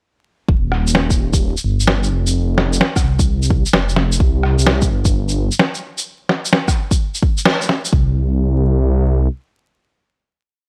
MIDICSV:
0, 0, Header, 1, 3, 480
1, 0, Start_track
1, 0, Key_signature, -3, "minor"
1, 0, Tempo, 465116
1, 494, Time_signature, 4, 2, 24, 8
1, 11025, End_track
2, 0, Start_track
2, 0, Title_t, "Detuned saw bass"
2, 0, Program_c, 0, 39
2, 503, Note_on_c, 0, 27, 99
2, 1596, Note_off_c, 0, 27, 0
2, 1697, Note_on_c, 0, 31, 88
2, 2165, Note_off_c, 0, 31, 0
2, 2178, Note_on_c, 0, 29, 93
2, 2886, Note_off_c, 0, 29, 0
2, 3134, Note_on_c, 0, 36, 85
2, 3752, Note_off_c, 0, 36, 0
2, 3853, Note_on_c, 0, 29, 97
2, 4323, Note_off_c, 0, 29, 0
2, 4338, Note_on_c, 0, 36, 98
2, 4714, Note_off_c, 0, 36, 0
2, 4730, Note_on_c, 0, 36, 104
2, 5043, Note_off_c, 0, 36, 0
2, 5056, Note_on_c, 0, 31, 85
2, 5673, Note_off_c, 0, 31, 0
2, 8182, Note_on_c, 0, 36, 98
2, 9577, Note_off_c, 0, 36, 0
2, 11025, End_track
3, 0, Start_track
3, 0, Title_t, "Drums"
3, 501, Note_on_c, 9, 36, 110
3, 604, Note_off_c, 9, 36, 0
3, 740, Note_on_c, 9, 37, 32
3, 843, Note_off_c, 9, 37, 0
3, 899, Note_on_c, 9, 82, 54
3, 978, Note_on_c, 9, 38, 99
3, 1002, Note_off_c, 9, 82, 0
3, 1081, Note_off_c, 9, 38, 0
3, 1138, Note_on_c, 9, 36, 98
3, 1138, Note_on_c, 9, 82, 46
3, 1241, Note_off_c, 9, 36, 0
3, 1241, Note_off_c, 9, 82, 0
3, 1376, Note_on_c, 9, 82, 53
3, 1378, Note_on_c, 9, 36, 104
3, 1479, Note_off_c, 9, 82, 0
3, 1481, Note_off_c, 9, 36, 0
3, 1620, Note_on_c, 9, 82, 43
3, 1723, Note_off_c, 9, 82, 0
3, 1859, Note_on_c, 9, 82, 52
3, 1935, Note_on_c, 9, 38, 97
3, 1962, Note_off_c, 9, 82, 0
3, 2038, Note_off_c, 9, 38, 0
3, 2098, Note_on_c, 9, 82, 31
3, 2202, Note_off_c, 9, 82, 0
3, 2339, Note_on_c, 9, 82, 59
3, 2443, Note_off_c, 9, 82, 0
3, 2659, Note_on_c, 9, 37, 31
3, 2659, Note_on_c, 9, 38, 55
3, 2762, Note_off_c, 9, 37, 0
3, 2762, Note_off_c, 9, 38, 0
3, 2816, Note_on_c, 9, 82, 55
3, 2897, Note_on_c, 9, 38, 102
3, 2919, Note_off_c, 9, 82, 0
3, 3001, Note_off_c, 9, 38, 0
3, 3056, Note_on_c, 9, 36, 102
3, 3058, Note_on_c, 9, 37, 35
3, 3058, Note_on_c, 9, 82, 46
3, 3159, Note_off_c, 9, 36, 0
3, 3161, Note_off_c, 9, 37, 0
3, 3161, Note_off_c, 9, 82, 0
3, 3294, Note_on_c, 9, 82, 51
3, 3296, Note_on_c, 9, 36, 104
3, 3398, Note_off_c, 9, 82, 0
3, 3399, Note_off_c, 9, 36, 0
3, 3533, Note_on_c, 9, 82, 46
3, 3617, Note_on_c, 9, 36, 109
3, 3636, Note_off_c, 9, 82, 0
3, 3720, Note_off_c, 9, 36, 0
3, 3774, Note_on_c, 9, 82, 55
3, 3854, Note_on_c, 9, 38, 103
3, 3877, Note_off_c, 9, 82, 0
3, 3957, Note_off_c, 9, 38, 0
3, 4014, Note_on_c, 9, 82, 33
3, 4091, Note_on_c, 9, 38, 61
3, 4117, Note_off_c, 9, 82, 0
3, 4194, Note_off_c, 9, 38, 0
3, 4252, Note_on_c, 9, 82, 59
3, 4336, Note_on_c, 9, 36, 114
3, 4356, Note_off_c, 9, 82, 0
3, 4439, Note_off_c, 9, 36, 0
3, 4575, Note_on_c, 9, 37, 31
3, 4678, Note_off_c, 9, 37, 0
3, 4733, Note_on_c, 9, 82, 60
3, 4814, Note_on_c, 9, 38, 107
3, 4836, Note_off_c, 9, 82, 0
3, 4917, Note_off_c, 9, 38, 0
3, 4970, Note_on_c, 9, 82, 45
3, 4974, Note_on_c, 9, 36, 104
3, 5074, Note_off_c, 9, 82, 0
3, 5077, Note_off_c, 9, 36, 0
3, 5210, Note_on_c, 9, 82, 51
3, 5214, Note_on_c, 9, 36, 104
3, 5313, Note_off_c, 9, 82, 0
3, 5317, Note_off_c, 9, 36, 0
3, 5455, Note_on_c, 9, 82, 45
3, 5558, Note_off_c, 9, 82, 0
3, 5692, Note_on_c, 9, 82, 55
3, 5774, Note_on_c, 9, 38, 107
3, 5795, Note_off_c, 9, 82, 0
3, 5877, Note_off_c, 9, 38, 0
3, 5929, Note_on_c, 9, 82, 32
3, 6032, Note_off_c, 9, 82, 0
3, 6170, Note_on_c, 9, 82, 59
3, 6273, Note_off_c, 9, 82, 0
3, 6494, Note_on_c, 9, 37, 29
3, 6494, Note_on_c, 9, 38, 56
3, 6597, Note_off_c, 9, 37, 0
3, 6597, Note_off_c, 9, 38, 0
3, 6657, Note_on_c, 9, 82, 59
3, 6735, Note_on_c, 9, 38, 105
3, 6760, Note_off_c, 9, 82, 0
3, 6838, Note_off_c, 9, 38, 0
3, 6894, Note_on_c, 9, 36, 102
3, 6895, Note_on_c, 9, 37, 33
3, 6895, Note_on_c, 9, 82, 46
3, 6997, Note_off_c, 9, 36, 0
3, 6998, Note_off_c, 9, 37, 0
3, 6998, Note_off_c, 9, 82, 0
3, 7133, Note_on_c, 9, 36, 110
3, 7135, Note_on_c, 9, 82, 51
3, 7237, Note_off_c, 9, 36, 0
3, 7238, Note_off_c, 9, 82, 0
3, 7374, Note_on_c, 9, 82, 43
3, 7457, Note_on_c, 9, 36, 116
3, 7478, Note_off_c, 9, 82, 0
3, 7560, Note_off_c, 9, 36, 0
3, 7612, Note_on_c, 9, 82, 53
3, 7693, Note_on_c, 9, 38, 114
3, 7716, Note_off_c, 9, 82, 0
3, 7797, Note_off_c, 9, 38, 0
3, 7856, Note_on_c, 9, 82, 30
3, 7937, Note_on_c, 9, 38, 60
3, 7960, Note_off_c, 9, 82, 0
3, 8041, Note_off_c, 9, 38, 0
3, 8099, Note_on_c, 9, 82, 57
3, 8180, Note_on_c, 9, 36, 108
3, 8203, Note_off_c, 9, 82, 0
3, 8283, Note_off_c, 9, 36, 0
3, 11025, End_track
0, 0, End_of_file